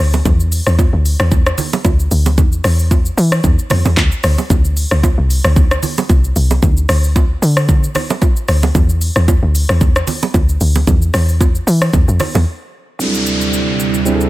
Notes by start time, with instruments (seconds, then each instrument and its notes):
0.00 log drum bass D2
0.13 low bongo, shaker
0.25 log drum bass E2, kick, low conga, shaker
0.40 shaker
0.52 open hi-hat, shaker
0.67 log drum bass E2, cross-stick, shaker
0.79 kick, high bongo, shaker
0.93 log drum bass D2
1.06 open hi-hat, shaker
1.20 log drum bass E2, cross-stick, shaker
1.31 kick, low conga, shaker
1.46 cross-stick, shaker
1.58 open hi-hat, low conga, shaker
1.73 low bongo, shaker
1.85 log drum bass D2, kick, high bongo, shaker
1.99 shaker
2.11 log drum bass D2, open hi-hat, shaker
2.26 low bongo, shaker
2.38 log drum bass E2, kick, low conga, shaker
2.52 shaker
2.64 log drum bass E2, cross-stick, open hi-hat, shaker
2.79 shaker
2.91 kick, high bongo, shaker
3.05 shaker
3.17 log drum bass E3, open hi-hat, shaker
3.32 cross-stick, shaker
3.44 log drum bass E2, kick, low conga, shaker
3.59 shaker
3.70 log drum bass F2, cross-stick, open hi-hat, low conga, shaker
3.85 log drum bass E2, low bongo, shaker
3.97 log drum bass D2, kick, clap, high bongo, shaker
4.12 shaker
4.24 log drum bass D2, cross-stick, open hi-hat, shaker
4.38 low bongo, shaker
4.50 log drum bass D2, kick, low conga, shaker
4.65 shaker
4.77 open hi-hat, shaker
4.91 log drum bass D2, cross-stick, shaker
5.03 kick, high bongo, shaker
5.18 log drum bass C2
5.30 open hi-hat, shaker
5.44 log drum bass D2, cross-stick, shaker
5.56 kick, low conga, shaker
5.71 cross-stick, shaker
5.83 open hi-hat, low conga, shaker
5.98 low bongo, shaker
6.09 log drum bass C2, kick, high bongo, shaker
6.24 shaker
6.36 log drum bass C2, open hi-hat, shaker
6.50 low bongo, shaker
6.62 log drum bass D2, kick, low conga, shaker
6.77 shaker
6.89 log drum bass D2, cross-stick, open hi-hat, shaker
7.04 shaker
7.16 kick, high bongo, shaker
7.42 log drum bass D3, open hi-hat, shaker
7.57 cross-stick, shaker
7.68 kick, low conga, shaker
7.83 shaker
7.95 cross-stick, open hi-hat, low conga, shaker
8.10 low bongo, shaker
8.22 kick, high bongo, shaker
8.36 shaker
8.48 log drum bass D2, cross-stick, open hi-hat, shaker
8.63 low bongo, shaker
8.75 log drum bass E2, kick, low conga, shaker
8.89 shaker
9.01 open hi-hat, shaker
9.16 log drum bass E2, cross-stick, shaker
9.28 kick, high bongo, shaker
9.43 log drum bass D2
9.55 open hi-hat, shaker
9.69 log drum bass E2, cross-stick, shaker
9.81 kick, low conga, shaker
9.96 cross-stick, shaker
10.07 open hi-hat, low conga, shaker
10.22 low bongo, shaker
10.34 log drum bass D2, kick, high bongo, shaker
10.49 shaker
10.61 log drum bass D2, open hi-hat, shaker
10.75 low bongo, shaker
10.87 log drum bass E2, kick, low conga, shaker
11.02 shaker
11.14 log drum bass E2, cross-stick, open hi-hat, shaker
11.29 shaker
11.41 kick, high bongo, shaker
11.55 shaker
11.67 log drum bass E3, open hi-hat, shaker
11.82 cross-stick, shaker
11.93 log drum bass E2, kick, low conga, shaker
12.08 log drum bass F2, shaker
12.20 cross-stick, open hi-hat, low conga, shaker
12.35 log drum bass E2, low bongo, shaker
12.99 analog synth pad D2 C3 G3 E4, grand piano F#3 C4 D4 E4 A4, downlifter, shaker
13.05 grand piano G3
13.14 shaker
13.26 shaker
13.41 shaker
13.53 shaker
13.80 shaker
13.94 shaker
14.05 grand piano G3 C4 D4 E4 G#4, shaker
14.14 grand piano A4
14.21 shaker